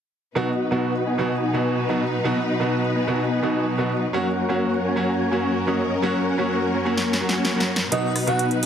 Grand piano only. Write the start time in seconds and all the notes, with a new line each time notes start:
0.35 B2 F#3 B3 D#4 F#4
0.71 B2 F#3 B3 D#4 F#4
1.18 B2 F#3 B3 D#4 F#4
1.53 B2 F#3 B3 D#4 F#4
1.89 B2 F#3 B3 D#4 F#4
2.24 B2 F#3 B3 D#4 F#4
2.60 B2 F#3 B3 D#4 F#4
3.07 B2 F#3 B3 D#4 F#4
3.42 B2 F#3 B3 D#4 F#4
3.78 B2 F#3 B3 D#4 F#4
4.13 F#3 A#3 C#4 F#4
4.49 F#3 A#3 C#4 F#4
4.96 F#3 A#3 C#4 F#4
5.31 F#3 A#3 C#4 F#4
5.67 F#3 A#3 C#4 F#4
6.02 F#3 A#3 C#4 F#4
6.38 F#3 A#3 C#4 F#4
6.85 F#3 A#3 C#4 F#4
7.21 F#3 A#3 C#4 F#4
7.56 F#3 A#3 C#4 F#4
7.91 B2 F#3 B3 D#4 F#4
8.27 B2 F#3 B3 D#4 F#4